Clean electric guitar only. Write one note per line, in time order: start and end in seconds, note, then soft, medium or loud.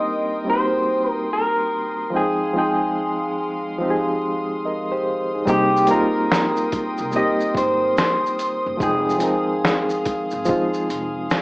0.00 0.49 D#5 loud
0.50 1.11 C5 medium
1.11 1.33 A#4 medium
1.33 2.11 A#4 medium
2.16 2.57 G#4 medium
2.58 5.03 G#4 medium
5.49 5.90 G4 medium
5.91 7.16 A#4 medium
7.16 7.57 D#5 loud
7.58 7.98 C5 loud
7.99 8.77 C5 medium
8.83 10.44 G#4 medium